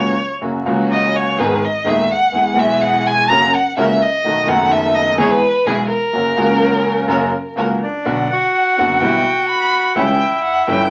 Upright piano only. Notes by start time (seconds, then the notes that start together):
Already playing: C#2 C#3 F#3 A#3 F#4
0.41 F#2 C#3 F#3 A#3 F#4
0.63 C#2 C#3 F#3 A#3
0.68 F#4
1.38 G#1 G#2 D#3 G#3 B3 G#4
1.84 D#1 D#2 D#3 G#3 B3 G#4
2.32 E2 E3 G#3 B3 G#4
2.53 B1 B2 E3 G#3 B3
2.58 G#4
3.29 F#2 C#3 F#3 A#3 F#4
3.77 C#2 C#3 F#3 A#3 F#4
4.24 B1 B2 D#3 A3 B3 F#4
4.46 F#1 F#2 D#3 A3 B3
4.50 F#4
5.17 E2 E3 G#3 B3 G#4
5.66 B1 B2 E3 G#3 B3 G#4
6.13 F#2 C#3 F#3 A#3 F#4
6.37 C#2 C#3 F#3 A#3 F#4
7.08 F#2 C#3 F#3 A#3 F#4
7.56 C#2 C#3 F#3 A#3 F#4
8.05 B1 B2 D3 F#3 B3 F#4
8.78 F#1 F#2 D3 F#3 B3 F#4
9.01 B1 B2 E3 G3 B3 G4
9.95 C#2 C#3 E3 G3 C#4 G4
10.67 G1 G2 E3 G3 C#4 G4